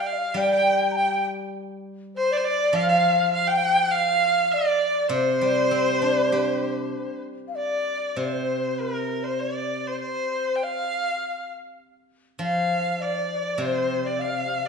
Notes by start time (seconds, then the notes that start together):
0.06 F5
0.13 D5
0.18 F5
0.34 G3 G5
0.51 G5
0.91 A#5
0.97 G5
2.16 C5
2.31 D5
2.37 C5
2.45 D5
2.73 F3 F5
2.89 F5
3.34 F5
3.48 G5
3.57 F5
3.64 G5
3.92 F5
4.52 D5
5.09 C3 C5
5.13 C5
5.41 G3
5.71 C4
6.02 D4
6.32 G4
7.48 F5
7.55 D5
8.16 C3 C5
8.25 D5
8.32 C5
8.80 A#4
9.23 C5 D5
9.39 D5
9.87 C5
10.00 C5
10.56 G5
10.63 F5
12.39 F3 F5
13.01 D5
13.47 D5
13.58 C3 C5
13.62 C5
14.05 D5
14.19 F5
14.24 D5
14.31 F5